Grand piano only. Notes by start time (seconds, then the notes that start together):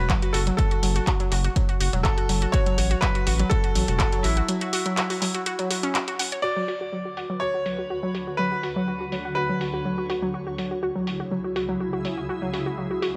Already playing: B4
0.33 A4
0.57 A4
2.03 A4
2.52 C#5
3.01 B4
3.50 A4
3.99 A4
4.23 E4
6.42 D5
7.40 C#5
8.37 B4
9.35 B4